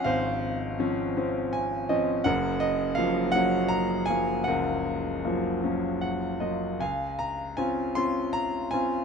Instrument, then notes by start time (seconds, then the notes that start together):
grand piano
Already playing: F3 C4 C#4 C#5 D#5 F5 F#5 G#5
0.04 G#1 C5 F5
0.79 F3 C4 C#4
1.17 F3 C4 C#4
1.53 G#5
1.89 F3 C4 C#4 D#5
2.24 F#1 F#2 A#4 F#5
2.60 D#5
2.95 F3 F#3 A#3 F5
3.32 F#3 A#3 C#4 F#5
3.68 A#5
4.06 F#3 G#5
4.10 F3 A#3
4.44 C#2 F#5
4.48 A#4
5.25 F3 F#3 A#3
5.63 F#3 A#3 C#4
6.01 F#5
6.40 F#3 A#3 F4 D#5
6.79 C#2 F5 G#5
7.19 A#5
7.57 C4 C#4 F4 G#5
7.95 C4 C#4 F4 C6
8.33 A#5
8.71 C4 C#4 F4 G#5